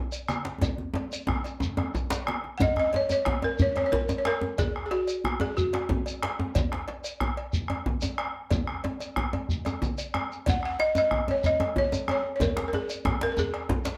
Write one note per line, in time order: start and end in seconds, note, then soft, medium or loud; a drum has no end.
0.12 cowbell soft
0.12 shekere soft
0.28 bombo rim loud
0.28 cowbell soft
0.28 high conga medium
0.28 shekere soft
0.45 djembe slap medium
0.61 bombo low medium
0.61 cowbell medium
0.61 djembe slap soft
0.61 djembe tone loud
0.61 djembe tone medium
0.61 low conga medium
0.61 djembe bass medium
0.61 shekere medium
0.78 high conga medium
0.94 bombo rim soft
0.94 cowbell soft
0.94 djembe slap medium
0.94 djembe tone loud
1.11 cowbell soft
1.11 djembe slap soft
1.11 high conga soft
1.11 shekere soft
1.27 bombo rim medium
1.27 djembe slap soft
1.27 djembe tone loud
1.27 high conga medium
1.27 low conga medium
1.29 djembe tone medium
1.29 djembe bass medium
1.44 cowbell soft
1.44 djembe slap medium
1.44 shekere soft
1.60 bombo rim soft
1.60 bombo low medium
1.60 djembe tone loud
1.60 high conga soft
1.60 shekere medium
1.77 bombo rim medium
1.77 cowbell soft
1.77 djembe tone loud
1.77 high conga medium
1.95 djembe slap medium
1.95 djembe tone medium
1.95 high conga soft
1.95 djembe bass medium
1.95 low conga medium
1.95 shekere soft
2.10 cowbell soft
2.10 djembe slap loud
2.10 high conga soft
2.10 djembe bass soft
2.10 shekere soft
2.27 bombo rim loud
2.27 cowbell medium
2.27 djembe slap soft
2.27 high conga medium
2.44 bombo rim soft
2.44 djembe slap medium
2.44 high conga soft
2.58 2.61 F#5 medium
2.58 bombo low loud
2.58 cowbell medium
2.58 djembe tone medium
2.58 high conga medium
2.58 djembe bass loud
2.58 djembe bass medium
2.58 low conga medium
2.58 shekere medium
2.62 2.69 D#5 loud
2.76 2.95 D#5 loud
2.76 bombo rim medium
2.76 djembe tone medium
2.93 3.03 C#5 loud
2.93 cowbell medium
2.93 djembe slap medium
2.93 djembe tone medium
3.09 3.45 C#5 loud
3.09 cowbell medium
3.09 djembe tone medium
3.09 shekere soft
3.25 bombo rim loud
3.25 djembe slap medium
3.25 djembe tone medium
3.25 high conga medium
3.25 djembe bass medium
3.25 low conga medium
3.42 3.59 A#4 medium
3.42 bombo rim soft
3.42 cowbell medium
3.42 djembe tone medium
3.59 3.76 C#5 loud
3.59 bombo low medium
3.59 high conga soft
3.59 djembe bass loud
3.59 shekere medium
3.76 3.85 C#5 loud
3.76 bombo rim medium
3.76 cowbell medium
3.76 djembe tone medium
3.86 3.92 C#5 medium
3.92 4.20 A#4 loud
3.92 djembe slap medium
3.92 djembe tone medium
3.92 high conga medium
3.92 djembe bass medium
3.92 low conga medium
4.09 bombo rim soft
4.09 cowbell medium
4.09 djembe tone loud
4.09 shekere soft
4.18 4.25 C#5 medium
4.25 4.60 A#4 loud
4.25 bombo rim loud
4.25 cowbell medium
4.25 djembe slap medium
4.41 djembe tone medium
4.58 4.85 G#4 medium
4.58 bombo low loud
4.58 cowbell medium
4.58 high conga medium
4.58 djembe tone medium
4.58 low conga medium
4.58 djembe bass medium
4.58 shekere medium
4.76 bombo rim medium
4.86 4.92 G#4 medium
4.91 5.42 F#4 loud
4.91 cowbell medium
4.91 djembe slap medium
5.08 cowbell medium
5.08 shekere soft
5.24 bombo rim loud
5.24 high conga medium
5.24 djembe bass medium
5.24 low conga medium
5.40 5.57 G#4 medium
5.40 bombo rim soft
5.40 cowbell medium
5.40 djembe tone loud
5.57 6.35 F#4 medium
5.57 bombo low loud
5.57 high conga soft
5.57 shekere medium
5.73 bombo rim medium
5.73 cowbell medium
5.73 djembe slap medium
5.89 djembe slap medium
5.89 djembe tone loud
5.89 djembe tone medium
5.89 high conga medium
5.89 djembe bass medium
5.89 low conga medium
6.06 bombo rim soft
6.06 cowbell medium
6.06 shekere soft
6.22 bombo rim loud
6.22 cowbell medium
6.22 djembe slap medium
6.39 djembe tone loud
6.55 bombo low loud
6.55 cowbell medium
6.55 djembe tone medium
6.55 high conga medium
6.55 djembe bass medium
6.55 low conga medium
6.55 shekere medium
6.72 bombo rim medium
6.72 djembe slap medium
6.88 cowbell medium
6.88 djembe slap medium
7.04 cowbell medium
7.04 shekere medium
7.20 bombo rim loud
7.20 djembe tone medium
7.20 high conga medium
7.20 djembe bass medium
7.20 low conga medium
7.37 bombo rim soft
7.37 cowbell medium
7.53 bombo low loud
7.53 high conga soft
7.53 shekere medium
7.68 bombo rim medium
7.68 cowbell soft
7.68 djembe tone medium
7.86 djembe slap medium
7.86 djembe tone medium
7.86 high conga medium
7.86 djembe bass medium
7.86 low conga medium
8.02 bombo rim soft
8.02 cowbell medium
8.02 djembe slap soft
8.02 djembe tone medium
8.02 shekere medium
8.18 bombo rim loud
8.18 cowbell medium
8.51 bombo rim soft
8.51 bombo low loud
8.51 cowbell medium
8.51 djembe tone medium
8.51 high conga medium
8.51 djembe tone medium
8.51 low conga medium
8.51 djembe bass medium
8.51 shekere medium
8.67 bombo rim medium
8.84 cowbell medium
8.84 djembe slap medium
8.84 djembe tone medium
9.00 bombo rim soft
9.00 cowbell medium
9.00 high conga soft
9.00 shekere soft
9.16 bombo rim loud
9.16 djembe tone medium
9.16 high conga medium
9.16 djembe bass medium
9.16 low conga medium
9.33 bombo rim soft
9.33 cowbell medium
9.33 djembe tone medium
9.49 bombo low loud
9.49 djembe slap soft
9.49 shekere medium
9.65 bombo rim medium
9.65 cowbell soft
9.65 djembe tone medium
9.65 shekere soft
9.82 bombo rim soft
9.82 djembe slap medium
9.82 djembe tone medium
9.82 high conga medium
9.82 djembe bass medium
9.82 low conga medium
9.82 shekere soft
9.98 cowbell medium
9.98 djembe slap soft
9.98 high conga soft
9.98 shekere soft
10.14 bombo rim loud
10.14 cowbell medium
10.14 djembe tone medium
10.31 bombo rim soft
10.31 shekere soft
10.46 10.56 F#5 loud
10.46 bombo low loud
10.46 cowbell medium
10.46 djembe tone medium
10.46 high conga medium
10.46 djembe bass medium
10.46 low conga medium
10.46 shekere medium
10.63 10.81 F#5 medium
10.63 bombo rim medium
10.79 10.94 D#5 loud
10.79 cowbell medium
10.79 djembe slap medium
10.95 11.30 D#5 loud
10.95 cowbell medium
10.95 djembe tone loud
10.95 shekere soft
11.11 bombo rim loud
11.11 high conga medium
11.11 djembe tone medium
11.11 low conga medium
11.11 djembe bass medium
11.28 11.46 C#5 loud
11.28 cowbell medium
11.28 djembe tone medium
11.44 11.75 D#5 loud
11.44 bombo low loud
11.44 djembe tone medium
11.44 high conga soft
11.44 shekere medium
11.60 bombo rim medium
11.60 cowbell medium
11.60 djembe tone loud
11.76 12.10 C#5 loud
11.76 djembe slap medium
11.76 djembe tone medium
11.76 high conga medium
11.76 djembe bass medium
11.76 low conga medium
11.92 bombo rim soft
11.92 cowbell medium
11.92 djembe tone medium
11.92 shekere soft
12.08 12.34 C#5 loud
12.08 bombo rim loud
12.08 cowbell medium
12.08 djembe tone medium
12.36 12.41 C#5 medium
12.40 12.67 A#4 medium
12.40 bombo low loud
12.40 cowbell medium
12.40 djembe tone medium
12.40 djembe tone loud
12.40 high conga medium
12.40 djembe bass medium
12.40 low conga medium
12.40 shekere medium
12.57 bombo rim medium
12.57 djembe slap medium
12.68 12.73 A#4 medium
12.73 13.23 G#4 loud
12.73 cowbell medium
12.73 djembe slap medium
12.73 djembe tone medium
12.90 cowbell medium
12.90 shekere soft
13.05 bombo rim loud
13.05 djembe tone loud
13.05 djembe tone medium
13.05 high conga medium
13.05 djembe bass medium
13.05 low conga medium
13.21 13.31 A#4 medium
13.21 bombo rim soft
13.21 cowbell medium
13.21 djembe slap medium
13.32 13.38 A#4 medium
13.37 13.97 G#4 loud
13.37 bombo low medium
13.37 djembe tone medium
13.37 high conga soft
13.37 shekere medium
13.54 bombo rim medium
13.54 cowbell medium
13.69 djembe slap medium
13.69 djembe tone loud
13.69 djembe tone medium
13.69 high conga medium
13.69 djembe bass medium
13.69 low conga medium
13.85 bombo rim soft
13.85 cowbell medium
13.85 djembe slap medium
13.85 djembe slap soft
13.85 shekere medium